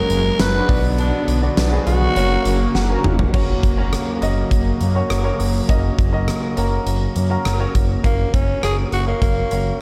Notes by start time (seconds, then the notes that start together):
Already playing: F#2 C#3 F#3 G#3 A#3 F#4 G#4 A#4 C#5
0.10 F#1 A#3 C#4 G#4, closed hi-hat
0.39 F#1 B4, snare, closed hi-hat, tambourine
0.54 D4 F#4 B4
0.68 B1 B2 D3 F#3 B3 D4 F#4 D5, kick, open hi-hat
0.98 D4, closed hi-hat
1.28 B1, closed hi-hat
1.42 B3 D4 F#4 D5
1.57 B1, snare, closed hi-hat, tambourine
1.72 B3 D4 F#4 G#4
1.87 B1 F#4, closed hi-hat
2.02 D4 F#4 B4
2.15 F#1 F#2 C#3 F#3 A#3 C#4 F#4 C#5, closed hi-hat
2.45 F#1 C#4 F#4 A#4, closed hi-hat
2.75 F#1 F#5, snare
2.90 C#4 F#4 A#4 A#5
3.04 F1, mid tom
3.19 floor tom
3.33 F#1 C#3 F#3 A#3 C#4 F#4 C#5, kick, crash
3.63 F#1, kick, closed hi-hat
3.77 A#3 C#4 F#4 C#5
3.93 cross-stick, closed hi-hat
4.22 F#1 A#3 C#4 F#4 D#5, closed hi-hat
4.51 F#1, kick, closed hi-hat
4.81 F#2, closed hi-hat
4.95 A#3 C#4 F#4 C#5
5.10 F#1, cross-stick, closed hi-hat
5.24 A#3 C#4 F#4 C#5
5.39 F#1, open hi-hat
5.68 F#1 A#3 C#4 F#4 D#5, kick, closed hi-hat
5.98 F#1, kick, closed hi-hat
6.13 A#3 C#4 F#4 D#5
6.28 cross-stick, closed hi-hat
6.57 F#1 A#3 C#4 F#4 A#4, closed hi-hat
6.86 F#1, closed hi-hat
7.16 F#2, closed hi-hat
7.30 A#3 C#4 F#4 A#4
7.45 F#1, cross-stick, closed hi-hat
7.60 A#3 C#4 F#4 C#5
7.75 F#1, kick, closed hi-hat
8.03 F#1 A#3 C#4 F#4 C#5, kick, closed hi-hat
8.34 F#1 C#4, kick, closed hi-hat
8.62 F#1 A#3 C#4 F#4 G#4 C#5, cross-stick, closed hi-hat
8.92 F#1 F#4, closed hi-hat
9.07 A#3 C#4 F#4 C#5
9.22 F#1 A#3, kick, closed hi-hat
9.51 F#1 A#3 C#4 F#4 C#5, closed hi-hat